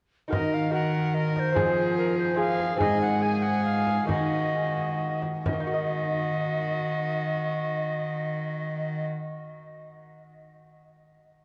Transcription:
0.28 D#4 F#4 A#4
0.32 D#3 A#4 D#5, frame drum
0.54 F5
0.70 D#4 F#4 A#4 F#5
0.75 A#4
1.15 A#4 D#5
1.36 C5 D#5, frame drum
1.53 F3 C4 F4 G#4, frame drum
1.57 F3 G#4
1.98 A#4
2.18 C5
2.35 C4 F4 G#4
2.39 G#4 F5
2.60 frame drum
2.76 G#2 C4 D#4 G#4
2.80 G#4 D#5, frame drum
3.01 F#5
3.22 G#4 G#5
3.42 F#5
3.65 F5
3.87 frame drum
4.06 D#3 A#3 D#4 F#4 D#5, frame drum
4.10 D#3
5.22 frame drum
5.45 D#3 F#4 D#5, frame drum
5.53 A#3
5.60 D#4
5.67 F#4
5.74 D#5

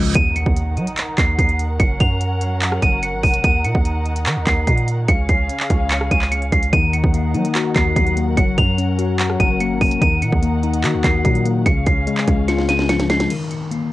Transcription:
Already playing: C#2 C#3 F3 G#3 C#4 F4, reverse cymbal
0.05 closed hi-hat
0.15 D#2 D#3 D#4 A#4 F#5 D#7, kick, closed hi-hat, impact
0.36 C#7, closed hi-hat
0.46 D#2, kick
0.56 closed hi-hat
0.77 F#3, closed hi-hat, open hi-hat
0.87 closed hi-hat
0.97 clap, closed hi-hat
1.18 D#2 C7, kick, clap, closed hi-hat
1.38 D#2 C7, kick, closed hi-hat
1.49 closed hi-hat
1.59 closed hi-hat
1.80 F#1 F#3 C#4 C#7, kick, closed hi-hat
2.00 F#2 F7, kick, closed hi-hat
2.21 closed hi-hat
2.41 closed hi-hat
2.62 clap, closed hi-hat
2.72 cross-stick
2.82 F#1 D#7, kick, closed hi-hat
3.03 C#7, closed hi-hat
3.13 G#1
3.23 F1 D#7, kick, closed hi-hat, open hi-hat
3.34 closed hi-hat
3.44 D#2 D#3 D#4 D#7, kick, closed hi-hat
3.65 A#2 C#7, closed hi-hat
3.75 D#2, kick
3.85 closed hi-hat
4.06 closed hi-hat, open hi-hat
4.16 closed hi-hat
4.26 D#3, clap, closed hi-hat
4.36 D#2
4.47 D#2 C7, kick, clap, closed hi-hat
4.67 A#2 C7, kick, closed hi-hat
4.78 closed hi-hat
4.88 closed hi-hat
5.08 C#2 C#3 C#4 G#4 F5 C#7, kick, closed hi-hat
5.29 C#2 C7, kick, closed hi-hat
5.49 closed hi-hat
5.60 clap
5.70 C#2, kick, closed hi-hat
5.91 C#7, clap, closed hi-hat
6.01 cross-stick
6.11 C#2 D#7, kick, closed hi-hat
6.22 clap
6.32 C#7, closed hi-hat
6.42 closed hi-hat
6.52 C#2 C7, kick, closed hi-hat
6.63 closed hi-hat
6.73 D#2 D#3 D#4 A#4 F#5 D#7, kick, closed hi-hat
6.93 C#7, closed hi-hat
7.04 D#2, kick
7.14 A#3, closed hi-hat
7.34 F#3 D#4, closed hi-hat, open hi-hat
7.45 closed hi-hat
7.55 F#4, clap, closed hi-hat
7.75 D#2 D#3 C7, kick, clap, closed hi-hat
7.96 D#2 F#3 C7, kick, closed hi-hat
8.07 closed hi-hat
8.17 A#3, closed hi-hat
8.37 F#1 F#3 C#4 C#7, kick, closed hi-hat
8.58 F#2 F7, kick, closed hi-hat
8.78 C#4, closed hi-hat
8.99 F#4, closed hi-hat
9.19 F#5, clap, closed hi-hat
9.30 cross-stick
9.40 F#1 F#3 D#7, kick, closed hi-hat
9.60 A#3 C#7, closed hi-hat
9.71 G#1
9.81 F1 C#4 D#7, kick, closed hi-hat, open hi-hat
9.91 closed hi-hat
10.01 D#2 D#3 D#4 F#5 D#7, kick, closed hi-hat
10.22 A#2 C#7, closed hi-hat
10.32 D#2, kick
10.43 A#3, closed hi-hat
10.63 D#4, closed hi-hat, open hi-hat
10.73 closed hi-hat
10.84 D#3 F#4, clap, closed hi-hat
10.94 D#2
11.04 D#2 D#3 C7, kick, clap, closed hi-hat
11.25 A#2 F#3 C7, kick, closed hi-hat
11.35 closed hi-hat
11.45 A#3, closed hi-hat
11.66 C#2 C#3 C#4 G#4 F5 C#7, kick, closed hi-hat
11.86 C#2 C7, kick, closed hi-hat
12.07 G#3, closed hi-hat
12.17 clap
12.28 C#2 C#4, kick, closed hi-hat
12.48 F4 C#7, snare, closed hi-hat
12.58 snare
12.69 C#3 D#7, snare, closed hi-hat
12.79 snare
12.89 F3 C#7, snare, closed hi-hat
13.00 snare, closed hi-hat
13.10 G#3 C7, snare, closed hi-hat
13.20 snare, closed hi-hat
13.30 D#3, closed hi-hat, crash, downlifter
13.51 closed hi-hat
13.71 A#3, closed hi-hat

